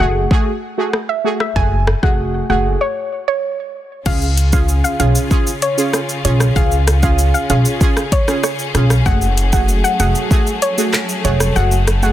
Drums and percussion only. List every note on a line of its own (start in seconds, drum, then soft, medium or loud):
0.31 kick loud
0.93 cross-stick medium
1.40 cross-stick medium
1.56 kick loud
1.87 cross-stick loud
2.03 kick medium
4.06 kick loud
4.06 crash medium
4.06 shaker medium
4.22 shaker medium
4.37 closed hi-hat medium
4.37 shaker medium
4.53 kick medium
4.53 shaker medium
4.68 shaker medium
4.84 shaker soft
5.00 closed hi-hat medium
5.00 shaker soft
5.15 shaker medium
5.31 kick loud
5.31 shaker medium
5.47 shaker medium
5.62 closed hi-hat medium
5.62 shaker soft
5.78 shaker medium
5.93 cross-stick medium
5.93 shaker medium
6.09 shaker soft
6.25 closed hi-hat medium
6.25 shaker medium
6.40 cross-stick medium
6.40 shaker medium
6.56 kick loud
6.56 shaker medium
6.72 shaker medium
6.87 cross-stick loud
6.87 closed hi-hat medium
6.87 shaker medium
7.03 kick medium
7.03 shaker medium
7.19 shaker medium
7.34 shaker soft
7.50 closed hi-hat medium
7.50 shaker medium
7.65 shaker medium
7.81 kick loud
7.81 shaker medium
7.97 cross-stick medium
7.97 shaker medium
8.12 kick medium
8.12 closed hi-hat medium
8.12 shaker soft
8.28 cross-stick medium
8.28 shaker medium
8.44 cross-stick medium
8.44 shaker medium
8.59 shaker soft
8.75 cross-stick medium
8.75 closed hi-hat medium
8.75 shaker medium
8.90 cross-stick medium
8.90 shaker medium
9.06 kick loud
9.06 shaker medium
9.21 shaker medium
9.38 closed hi-hat medium
9.38 shaker medium
9.53 kick medium
9.53 shaker medium
9.68 shaker medium
9.84 shaker medium
10.00 closed hi-hat medium
10.00 shaker medium
10.15 shaker medium
10.31 kick loud
10.31 shaker medium
10.47 shaker medium
10.62 closed hi-hat medium
10.62 shaker soft
10.78 shaker medium
10.93 cross-stick medium
10.93 clap medium
10.93 shaker medium
11.09 shaker medium
11.25 closed hi-hat medium
11.25 shaker medium
11.40 cross-stick medium
11.40 shaker medium
11.56 shaker medium
11.72 shaker medium
11.87 cross-stick loud
11.87 closed hi-hat medium
11.87 shaker medium
12.03 shaker medium